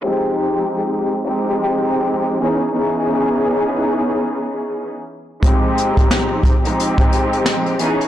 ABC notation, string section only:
X:1
M:4/4
L:1/16
Q:"Swing 16ths" 1/4=89
K:Fm
V:1 name="String section"
[F,A,CEG]6 z [F,A,CEG]6- [F,A,CEG] [_F,_CDEA]2 | [_F,_CDEA]12- [F,CDEA] z3 | [F,A,CEG]6 z [F,A,CEG]6- [F,A,CEG] [_F,_CDEA]2 |]